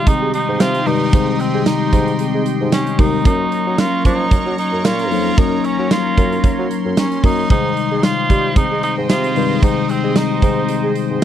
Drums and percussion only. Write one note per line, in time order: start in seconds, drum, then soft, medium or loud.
0.07 kick loud
0.07 closed hi-hat loud
0.34 closed hi-hat medium
0.60 snare loud
0.60 closed hi-hat loud
0.60 tambourine medium
0.74 closed hi-hat medium
0.87 open hi-hat medium
1.13 kick loud
1.13 closed hi-hat loud
1.40 closed hi-hat medium
1.66 snare loud
1.66 closed hi-hat medium
1.66 tambourine medium
1.93 kick medium
1.93 closed hi-hat medium
2.08 closed hi-hat soft
2.19 closed hi-hat loud
2.46 closed hi-hat medium
2.72 snare loud
2.72 closed hi-hat loud
2.72 tambourine medium
2.87 closed hi-hat medium
2.99 kick loud
2.99 open hi-hat medium
3.25 kick loud
3.25 closed hi-hat loud
3.52 closed hi-hat medium
3.78 snare loud
3.78 closed hi-hat medium
3.78 tambourine medium
4.05 kick medium
4.05 closed hi-hat medium
4.31 kick loud
4.31 closed hi-hat loud
4.58 closed hi-hat medium
4.85 snare loud
4.85 closed hi-hat loud
4.85 tambourine medium
4.99 closed hi-hat medium
5.11 open hi-hat medium
5.38 kick loud
5.38 closed hi-hat loud
5.64 closed hi-hat medium
5.91 snare loud
5.91 closed hi-hat medium
5.91 tambourine medium
6.18 kick medium
6.18 closed hi-hat medium
6.33 closed hi-hat soft
6.44 kick loud
6.44 closed hi-hat medium
6.71 closed hi-hat medium
6.97 snare loud
6.97 closed hi-hat loud
6.97 tambourine medium
7.12 closed hi-hat medium
7.24 kick loud
7.24 open hi-hat medium
7.50 kick loud
7.50 closed hi-hat medium
7.77 closed hi-hat medium
8.03 snare loud
8.03 closed hi-hat medium
8.03 tambourine medium
8.30 kick medium
8.30 closed hi-hat medium
8.56 kick loud
8.56 closed hi-hat medium
8.83 closed hi-hat medium
9.09 snare loud
9.09 closed hi-hat loud
9.09 tambourine medium
9.24 closed hi-hat medium
9.36 open hi-hat medium
9.63 kick loud
9.63 closed hi-hat medium
9.89 closed hi-hat medium
10.16 snare loud
10.16 closed hi-hat medium
10.16 tambourine medium
10.42 kick medium
10.42 closed hi-hat medium
10.69 closed hi-hat medium
10.96 closed hi-hat medium